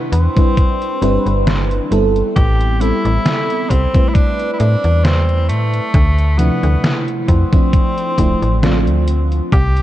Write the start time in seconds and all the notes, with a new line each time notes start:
Already playing: C3 G3 D4 E4 B4
0.12 E2 C4, closed hi-hat
0.35 G3 C4 D4 E4 B4, kick, closed hi-hat
0.57 kick, closed hi-hat
0.81 closed hi-hat
1.01 G1 G3 C4 D4 E4 B4, closed hi-hat
1.26 G1, closed hi-hat
1.47 snare, closed hi-hat
1.71 closed hi-hat
1.91 G1 G3 B3 C4 E4 A4, closed hi-hat
2.16 closed hi-hat
2.36 A1 G4, kick, closed hi-hat
2.61 closed hi-hat
2.79 G3 B3 C4 E4 A4, closed hi-hat
3.05 A1, closed hi-hat
3.26 snare, closed hi-hat
3.50 closed hi-hat
3.70 C2 C4, kick, closed hi-hat
3.93 G3 A3 C4 E4 B4, kick, closed hi-hat
4.09 E4
4.15 D4, kick, closed hi-hat
4.40 closed hi-hat
4.54 E4
4.59 A2 D4, closed hi-hat
4.84 E2, closed hi-hat
5.04 C4, snare, closed hi-hat
5.29 closed hi-hat
5.49 A2 A3, closed hi-hat
5.74 closed hi-hat
5.94 D2, kick, closed hi-hat
6.19 closed hi-hat
6.37 C3 F3 A3 B3 D4 E4, closed hi-hat
6.63 D2, closed hi-hat
6.84 snare, closed hi-hat
7.08 closed hi-hat
7.28 F2 C4, kick, closed hi-hat
7.52 F3 A3 C4 D4 E4, kick, closed hi-hat
7.73 kick, closed hi-hat
7.98 closed hi-hat
8.17 D1 F3 A3 C4 D4 E4, kick, closed hi-hat
8.42 A1, closed hi-hat
8.62 F3 A3 C4 D4 F4, snare, closed hi-hat
8.87 D2, closed hi-hat
9.08 closed hi-hat
9.32 closed hi-hat
9.52 C2 G4, kick, closed hi-hat
9.77 closed hi-hat